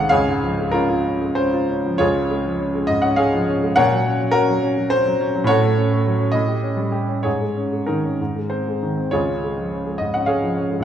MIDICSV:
0, 0, Header, 1, 2, 480
1, 0, Start_track
1, 0, Key_signature, -5, "major"
1, 0, Tempo, 633580
1, 86, Time_signature, 6, 3, 24, 8
1, 1524, Tempo, 586510
1, 3444, Tempo, 569801
1, 5364, Tempo, 619835
1, 7284, Tempo, 578592
1, 8714, End_track
2, 0, Start_track
2, 0, Title_t, "Grand piano"
2, 0, Program_c, 0, 0
2, 0, Control_c, 0, 64, 127
2, 0, Note_on_c, 0, 36, 77
2, 0, Note_on_c, 0, 48, 60
2, 0, Note_on_c, 0, 51, 65
2, 0, Note_on_c, 0, 56, 66
2, 0, Note_on_c, 0, 63, 69
2, 0, Note_on_c, 0, 77, 115
2, 0, Note_on_c, 0, 78, 127
2, 70, Note_off_c, 0, 77, 0
2, 70, Note_on_c, 0, 77, 113
2, 79, Note_on_c, 0, 73, 78
2, 84, Note_on_c, 0, 68, 84
2, 85, Note_off_c, 0, 56, 0
2, 91, Note_on_c, 0, 37, 80
2, 98, Control_c, 0, 64, 0
2, 102, Note_off_c, 0, 48, 0
2, 103, Note_off_c, 0, 51, 0
2, 103, Note_off_c, 0, 78, 0
2, 105, Note_off_c, 0, 36, 0
2, 108, Note_off_c, 0, 63, 0
2, 211, Note_on_c, 0, 44, 50
2, 250, Control_c, 0, 64, 127
2, 324, Note_on_c, 0, 53, 56
2, 401, Note_off_c, 0, 44, 0
2, 442, Note_on_c, 0, 56, 51
2, 517, Note_off_c, 0, 53, 0
2, 542, Note_on_c, 0, 70, 91
2, 552, Note_on_c, 0, 61, 66
2, 557, Note_on_c, 0, 65, 72
2, 636, Note_off_c, 0, 56, 0
2, 668, Note_off_c, 0, 65, 0
2, 680, Note_on_c, 0, 65, 56
2, 756, Note_off_c, 0, 61, 0
2, 771, Note_off_c, 0, 73, 0
2, 774, Note_off_c, 0, 68, 0
2, 797, Note_off_c, 0, 77, 0
2, 802, Note_on_c, 0, 61, 51
2, 873, Note_off_c, 0, 65, 0
2, 917, Note_on_c, 0, 56, 48
2, 994, Note_off_c, 0, 61, 0
2, 1024, Note_on_c, 0, 72, 90
2, 1031, Note_off_c, 0, 70, 0
2, 1042, Note_on_c, 0, 61, 59
2, 1112, Note_off_c, 0, 56, 0
2, 1161, Note_on_c, 0, 65, 56
2, 1237, Note_off_c, 0, 61, 0
2, 1287, Note_on_c, 0, 61, 64
2, 1359, Note_off_c, 0, 65, 0
2, 1411, Note_on_c, 0, 53, 53
2, 1478, Note_off_c, 0, 61, 0
2, 1496, Note_off_c, 0, 37, 0
2, 1501, Note_on_c, 0, 73, 104
2, 1508, Note_on_c, 0, 65, 82
2, 1509, Note_on_c, 0, 68, 74
2, 1514, Note_off_c, 0, 72, 0
2, 1516, Note_on_c, 0, 37, 73
2, 1526, Note_off_c, 0, 53, 0
2, 1539, Control_c, 0, 64, 0
2, 1640, Note_on_c, 0, 61, 50
2, 1662, Control_c, 0, 64, 127
2, 1768, Note_on_c, 0, 56, 59
2, 1836, Note_off_c, 0, 61, 0
2, 1885, Note_on_c, 0, 53, 46
2, 1959, Note_off_c, 0, 56, 0
2, 1999, Note_on_c, 0, 61, 62
2, 2077, Note_off_c, 0, 53, 0
2, 2124, Note_on_c, 0, 56, 51
2, 2193, Note_off_c, 0, 61, 0
2, 2203, Note_off_c, 0, 65, 0
2, 2204, Note_off_c, 0, 68, 0
2, 2227, Note_on_c, 0, 75, 100
2, 2232, Note_off_c, 0, 73, 0
2, 2243, Note_on_c, 0, 44, 54
2, 2316, Note_off_c, 0, 56, 0
2, 2346, Note_on_c, 0, 78, 80
2, 2355, Note_off_c, 0, 75, 0
2, 2355, Note_on_c, 0, 61, 57
2, 2435, Note_off_c, 0, 44, 0
2, 2466, Note_on_c, 0, 77, 93
2, 2473, Note_on_c, 0, 73, 74
2, 2475, Note_off_c, 0, 78, 0
2, 2475, Note_on_c, 0, 68, 81
2, 2480, Note_on_c, 0, 56, 56
2, 2552, Note_off_c, 0, 61, 0
2, 2606, Note_on_c, 0, 53, 61
2, 2675, Note_off_c, 0, 56, 0
2, 2726, Note_on_c, 0, 61, 65
2, 2799, Note_off_c, 0, 53, 0
2, 2851, Note_on_c, 0, 56, 62
2, 2919, Note_off_c, 0, 61, 0
2, 2929, Note_off_c, 0, 73, 0
2, 2930, Note_off_c, 0, 37, 0
2, 2930, Note_off_c, 0, 68, 0
2, 2952, Note_on_c, 0, 78, 121
2, 2958, Note_off_c, 0, 77, 0
2, 2960, Note_on_c, 0, 70, 89
2, 2962, Note_on_c, 0, 73, 85
2, 2969, Note_off_c, 0, 56, 0
2, 2970, Note_on_c, 0, 46, 81
2, 2981, Control_c, 0, 64, 0
2, 3086, Note_on_c, 0, 54, 56
2, 3107, Control_c, 0, 64, 127
2, 3202, Note_on_c, 0, 61, 59
2, 3276, Note_off_c, 0, 54, 0
2, 3317, Note_on_c, 0, 54, 54
2, 3393, Note_off_c, 0, 61, 0
2, 3396, Note_off_c, 0, 70, 0
2, 3407, Note_off_c, 0, 73, 0
2, 3409, Note_on_c, 0, 70, 111
2, 3420, Note_on_c, 0, 66, 73
2, 3422, Note_on_c, 0, 61, 82
2, 3435, Note_off_c, 0, 78, 0
2, 3512, Note_off_c, 0, 54, 0
2, 3548, Note_on_c, 0, 54, 63
2, 3657, Note_off_c, 0, 61, 0
2, 3670, Note_on_c, 0, 61, 65
2, 3749, Note_off_c, 0, 54, 0
2, 3799, Note_on_c, 0, 54, 52
2, 3869, Note_off_c, 0, 61, 0
2, 3879, Note_off_c, 0, 66, 0
2, 3901, Note_on_c, 0, 72, 109
2, 3907, Note_off_c, 0, 70, 0
2, 3920, Note_on_c, 0, 61, 64
2, 3992, Note_off_c, 0, 54, 0
2, 4033, Note_on_c, 0, 54, 65
2, 4111, Note_off_c, 0, 61, 0
2, 4159, Note_on_c, 0, 61, 73
2, 4227, Note_off_c, 0, 54, 0
2, 4284, Note_on_c, 0, 54, 64
2, 4348, Note_off_c, 0, 61, 0
2, 4356, Note_on_c, 0, 45, 81
2, 4364, Note_off_c, 0, 46, 0
2, 4380, Note_on_c, 0, 73, 117
2, 4385, Note_off_c, 0, 72, 0
2, 4393, Note_on_c, 0, 69, 80
2, 4396, Note_on_c, 0, 66, 92
2, 4399, Note_off_c, 0, 54, 0
2, 4409, Control_c, 0, 64, 0
2, 4524, Note_on_c, 0, 57, 59
2, 4564, Control_c, 0, 64, 127
2, 4634, Note_on_c, 0, 61, 64
2, 4708, Note_off_c, 0, 57, 0
2, 4758, Note_on_c, 0, 57, 51
2, 4824, Note_off_c, 0, 61, 0
2, 4880, Note_on_c, 0, 54, 61
2, 4948, Note_off_c, 0, 57, 0
2, 4994, Note_on_c, 0, 61, 56
2, 5071, Note_off_c, 0, 54, 0
2, 5074, Note_off_c, 0, 45, 0
2, 5081, Note_off_c, 0, 69, 0
2, 5082, Note_off_c, 0, 66, 0
2, 5093, Note_on_c, 0, 75, 94
2, 5108, Note_off_c, 0, 73, 0
2, 5112, Note_on_c, 0, 45, 63
2, 5116, Note_off_c, 0, 61, 0
2, 5129, Control_c, 0, 64, 0
2, 5230, Note_on_c, 0, 67, 42
2, 5275, Control_c, 0, 64, 127
2, 5359, Note_on_c, 0, 61, 53
2, 5427, Note_off_c, 0, 67, 0
2, 5466, Note_on_c, 0, 55, 54
2, 5546, Note_off_c, 0, 61, 0
2, 5583, Note_on_c, 0, 67, 58
2, 5661, Note_off_c, 0, 55, 0
2, 5709, Note_on_c, 0, 61, 46
2, 5784, Note_off_c, 0, 67, 0
2, 5816, Note_off_c, 0, 45, 0
2, 5822, Note_on_c, 0, 73, 75
2, 5829, Note_off_c, 0, 75, 0
2, 5831, Note_on_c, 0, 68, 65
2, 5836, Note_off_c, 0, 61, 0
2, 5838, Note_on_c, 0, 44, 63
2, 5856, Control_c, 0, 64, 0
2, 5960, Note_on_c, 0, 56, 46
2, 5978, Control_c, 0, 64, 127
2, 6085, Note_on_c, 0, 61, 48
2, 6158, Note_off_c, 0, 56, 0
2, 6209, Note_on_c, 0, 56, 40
2, 6281, Note_off_c, 0, 61, 0
2, 6295, Note_off_c, 0, 68, 0
2, 6315, Note_on_c, 0, 70, 73
2, 6321, Note_off_c, 0, 73, 0
2, 6324, Note_on_c, 0, 63, 54
2, 6330, Note_on_c, 0, 51, 45
2, 6402, Note_off_c, 0, 56, 0
2, 6456, Note_on_c, 0, 61, 39
2, 6523, Note_off_c, 0, 51, 0
2, 6548, Note_off_c, 0, 44, 0
2, 6573, Note_off_c, 0, 61, 0
2, 6583, Control_c, 0, 64, 0
2, 6583, Note_on_c, 0, 44, 53
2, 6696, Note_on_c, 0, 56, 39
2, 6705, Control_c, 0, 64, 127
2, 6776, Note_off_c, 0, 63, 0
2, 6802, Note_off_c, 0, 70, 0
2, 6804, Note_on_c, 0, 72, 66
2, 6820, Note_on_c, 0, 60, 44
2, 6884, Note_off_c, 0, 56, 0
2, 6942, Note_on_c, 0, 56, 42
2, 7006, Note_off_c, 0, 60, 0
2, 7060, Note_on_c, 0, 51, 46
2, 7126, Note_off_c, 0, 56, 0
2, 7174, Note_on_c, 0, 60, 41
2, 7243, Note_off_c, 0, 51, 0
2, 7268, Note_off_c, 0, 44, 0
2, 7280, Note_on_c, 0, 73, 85
2, 7281, Note_off_c, 0, 72, 0
2, 7287, Note_off_c, 0, 60, 0
2, 7289, Note_on_c, 0, 65, 61
2, 7290, Note_on_c, 0, 68, 67
2, 7297, Control_c, 0, 64, 0
2, 7301, Note_on_c, 0, 37, 57
2, 7423, Note_on_c, 0, 61, 46
2, 7433, Control_c, 0, 64, 127
2, 7549, Note_on_c, 0, 56, 47
2, 7614, Note_off_c, 0, 61, 0
2, 7668, Note_on_c, 0, 53, 41
2, 7737, Note_off_c, 0, 56, 0
2, 7792, Note_on_c, 0, 61, 45
2, 7854, Note_off_c, 0, 53, 0
2, 7906, Note_on_c, 0, 56, 43
2, 7974, Note_off_c, 0, 61, 0
2, 7983, Note_off_c, 0, 65, 0
2, 7984, Note_off_c, 0, 68, 0
2, 8001, Note_on_c, 0, 75, 80
2, 8012, Note_off_c, 0, 73, 0
2, 8020, Note_on_c, 0, 44, 41
2, 8089, Note_off_c, 0, 56, 0
2, 8125, Note_off_c, 0, 75, 0
2, 8132, Note_on_c, 0, 78, 71
2, 8143, Note_on_c, 0, 61, 41
2, 8204, Note_off_c, 0, 44, 0
2, 8234, Note_on_c, 0, 77, 75
2, 8242, Note_on_c, 0, 73, 61
2, 8243, Note_on_c, 0, 68, 62
2, 8248, Note_off_c, 0, 78, 0
2, 8248, Note_on_c, 0, 56, 49
2, 8324, Note_off_c, 0, 61, 0
2, 8374, Note_on_c, 0, 53, 44
2, 8436, Note_off_c, 0, 56, 0
2, 8484, Note_on_c, 0, 61, 53
2, 8559, Note_off_c, 0, 53, 0
2, 8603, Note_on_c, 0, 56, 47
2, 8675, Note_off_c, 0, 61, 0
2, 8682, Note_on_c, 0, 34, 59
2, 8687, Note_off_c, 0, 73, 0
2, 8688, Note_off_c, 0, 68, 0
2, 8699, Note_off_c, 0, 37, 0
2, 8714, Note_off_c, 0, 34, 0
2, 8714, Note_off_c, 0, 56, 0
2, 8714, Note_off_c, 0, 77, 0
2, 8714, End_track
0, 0, End_of_file